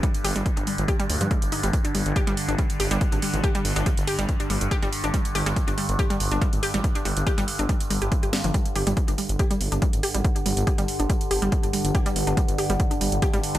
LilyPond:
<<
  \new Staff \with { instrumentName = "Synth arpeggio sound" } { \clef bass \time 4/4 \key c \minor \tempo 4 = 141 g16 r16 g'16 g16 r16 d'16 g16 r16 g'16 g16 r16 f16 aes16 r16 ees'16 g16 | r16 d'16 g16 r16 g'16 g16 r16 d'16 g16 r16 g'16 g16 r16 d'16 g16 r16 | g'16 g16 r16 d'16 g16 r16 g'16 g16 r16 d'16 g16 r16 g'16 g16 r16 d'16 | g16 r16 g'16 g16 r16 d'16 g16 r16 g'16 g16 r16 d'16 g16 r16 g'16 g16 |
r16 d'16 g16 r16 g'16 g16 r16 d'16 g16 r16 g16 g'16 r16 g'16 g16 f16 | g16 r16 g'16 g16 r16 d'16 g16 r16 g'16 g16 r16 d'16 g16 r16 g'16 g16 | r16 d'16 g16 r16 g'16 g16 r16 d'16 g16 r16 g'16 g16 r16 d'16 g16 r16 | g'16 g16 r16 d'16 g16 r16 g'16 g16 r16 d'16 g16 r16 g'16 g16 r16 d'16 | }
  \new Staff \with { instrumentName = "Synth drone" } { \clef bass \time 4/4 \key c \minor <g, d>1~ | <g, d>1~ | <g, d>1~ | <g, d>1~ |
<g, d>1 | <g, d>1~ | <g, d>1~ | <g, d>1 | }
  \new Staff \with { instrumentName = "Detuned saw bass" } { \clef bass \time 4/4 \key c \minor r8 g,,16 g,,16 r16 g,,16 r16 g,,16 r8 d,16 g,16 r16 g,,16 r16 g,,16 | r8 g,,16 g,,16 r16 g,,16 r16 g,,16 r8 g,,16 g,,16 r16 aes,,16 r16 aes,,16 | r8 g,,16 g,,16 r16 g,,16 r16 g,,16 r8 g,,16 g,,16 r16 g,,16 r16 g,,16 | r8 g,,16 g,,16 r16 g,,16 r16 g,,16 r8 g,,16 g,,16 r16 aes,,16 r16 aes,,16 |
r8 g,,16 g,,16 r16 g,,16 r16 g,,16 r8 g,,16 g,,16 r16 g,,16 r16 g,,16 | r8 g,,16 g,,16 r16 g,,16 r16 g,,16 r8 g,,16 g,,16 r16 aes,,16 r16 aes,,16 | r8 g,,16 g,,16 r16 g,,16 r16 g,,16 r8 g,,16 g,,16 r16 g,,16 r16 g,,16 | r8 g,,16 g,,16 r16 g,,16 r16 g,,16 r8 g,,16 g,,16 r16 aes,,16 r16 aes,,16 | }
  \new DrumStaff \with { instrumentName = "Drums" } \drummode { \time 4/4 <hh bd>16 hh16 hho16 hh16 <hh bd>16 hh16 hho16 hh16 <hh bd>16 hh16 hho16 hh16 <hh bd>16 hh16 hho16 hh16 | <hh bd>16 hh16 hho16 hh16 <hh bd>16 hh16 hho16 hh16 <hh bd>16 hh16 hho16 hh16 <hh bd>16 hh16 hho16 hh16 | <hh bd>16 hh16 hho16 hh16 <hh bd>16 hh16 hho16 hh16 <hh bd>16 hh16 hho16 hh16 <hh bd>16 hh16 hho16 hh16 | <hh bd>16 hh16 hho16 hh16 <hh bd>16 hh16 hho16 hh16 <hh bd>16 hh16 hho16 hh16 <hh bd>16 hh16 hho16 hh16 |
<hh bd>16 hh16 hho16 hh16 <hh bd>16 hh16 hho16 hh16 <hh bd>16 hh16 hho16 hh16 <hh bd>16 hh16 <hho sn>16 hh16 | <hh bd>16 hh16 hho16 hh16 <hh bd>16 hh16 hho16 hh16 <hh bd>16 hh16 hho16 hh16 <hh bd>16 hh16 hho16 hh16 | <hh bd>16 hh16 hho16 hh16 <hh bd>16 hh16 hho16 hh16 <hh bd>16 hh16 hho16 hh16 <hh bd>16 hh16 hho16 hh16 | <hh bd>16 hh16 hho16 hh16 <hh bd>16 hh16 hho16 hh16 <hh bd>16 hh16 hho16 hh16 <hh bd>16 hh16 hho16 hh16 | }
>>